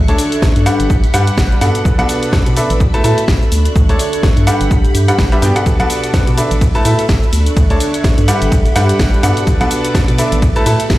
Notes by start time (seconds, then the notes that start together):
Already playing: D4 A4 E5 C#6 F#6
0.08 D2 D3 D4 A4 C#5 A5, closed hi-hat, shaker
0.18 open hi-hat, shaker
0.32 closed hi-hat, shaker
0.42 A1, kick, snare, shaker
0.56 G2, closed hi-hat, shaker
0.66 G3 D4 G4 B4 F#5 B5, open hi-hat, shaker
0.80 G1, closed hi-hat, shaker
0.90 kick, shaker
1.04 closed hi-hat, shaker
1.14 G2 G3 D4 G4 B4 F#5, open hi-hat, shaker
1.27 closed hi-hat, shaker
1.38 G1, kick, snare, shaker
1.51 shaker
1.61 G2 B2 D4 A4 B4 F#5, open hi-hat, shaker
1.75 closed hi-hat, shaker
1.85 B1 B4 A5 D6, kick, shaker
1.99 B1 B2 D4 A4 B4 F#5, closed hi-hat, shaker
2.09 open hi-hat, shaker
2.23 closed hi-hat, shaker
2.33 F#2, kick, snare, shaker
2.46 B2, closed hi-hat, shaker
2.56 D4 A4 B4 E5, open hi-hat, shaker
2.70 A1, closed hi-hat, shaker
2.80 A4 E5 B5, kick, shaker
2.94 A3 E4 A4 B4 A5, closed hi-hat, shaker
3.04 A2 A3 E4 A4 B4 A5, open hi-hat, shaker
3.14 E5
3.18 closed hi-hat, shaker
3.28 G1, kick, snare, shaker
3.42 shaker
3.52 D2 D4 C#6 F#6, open hi-hat, shaker
3.65 closed hi-hat, shaker
3.76 D2, kick, shaker
3.89 D2 D3 D4 A4 C#5 A5, closed hi-hat, shaker
3.99 open hi-hat, shaker
4.13 closed hi-hat, shaker
4.23 A1, kick, snare, shaker
4.37 G2, closed hi-hat, shaker
4.47 G3 D4 G4 B4 F#5 B5, open hi-hat, shaker
4.61 G1, closed hi-hat, shaker
4.71 kick, shaker
4.85 closed hi-hat, shaker
4.95 G2, open hi-hat, shaker
5.08 G3 D4 G4 B4 F#5, closed hi-hat, shaker
5.18 G1, kick, snare, shaker
5.32 G3 D4 G4 B4 E5, closed hi-hat, shaker
5.42 G2 B2 D4 G4 B4 G5, open hi-hat, shaker
5.56 B2 D4 A4 B4 F#5, closed hi-hat, shaker
5.66 B1 B4 A5 D6, kick, ride, shaker
5.80 B1 B2 D4 A4 B4 F#5, closed hi-hat, shaker
5.90 open hi-hat, ride, shaker
6.04 closed hi-hat, shaker
6.14 F#2, kick, snare, ride, shaker
6.27 B2, closed hi-hat, shaker
6.37 D4 A4 B4 E5, open hi-hat, ride, shaker
6.51 A1, closed hi-hat, shaker
6.61 A4 E5 B5, kick, ride, shaker
6.75 A3 E4 A4 B4 A5, closed hi-hat, shaker
6.83 A2 A3 E4 A4 B4 E5 A5, open hi-hat, ride, shaker
6.99 closed hi-hat, shaker
7.09 G1, kick, snare, ride, shaker
7.23 shaker
7.33 D2 D4 C#6 F#6, open hi-hat, ride, shaker
7.46 closed hi-hat, shaker
7.57 D2, kick, ride, shaker
7.70 D2 D3 D4 A4 C#5 A5, closed hi-hat, shaker
7.80 open hi-hat, ride, shaker
7.94 closed hi-hat, shaker
8.04 A1, kick, snare, ride, shaker
8.18 G2, closed hi-hat, shaker
8.28 G3 D4 G4 B4 F#5 B5, open hi-hat, ride, shaker
8.42 G1, closed hi-hat, shaker
8.52 kick, ride, shaker
8.66 closed hi-hat, shaker
8.76 G2 G3 D4 G4 B4 F#5, open hi-hat, ride, shaker
8.89 closed hi-hat, shaker
8.99 G1, kick, snare, ride, shaker
9.13 shaker
9.23 G2 B2 D4 A4 B4 F#5, open hi-hat, ride, shaker
9.37 closed hi-hat, shaker
9.47 B1 B4 A5 D6, kick, ride, shaker
9.61 B1 B2 D4 A4 B4 F#5, closed hi-hat, shaker
9.71 open hi-hat, ride, shaker
9.85 closed hi-hat, shaker
9.95 F#2, kick, snare, ride, shaker
10.08 B2, closed hi-hat, shaker
10.18 D4 A4 B4 E5, open hi-hat, ride, shaker
10.32 A1, closed hi-hat, shaker
10.42 A4 E5 B5, kick, ride, shaker
10.56 A3 E4 A4 B4 A5, closed hi-hat, shaker
10.66 A2 A3 E4 A4 B4 A5, open hi-hat, ride, shaker
10.80 closed hi-hat, shaker
10.90 G1, kick, snare, ride, shaker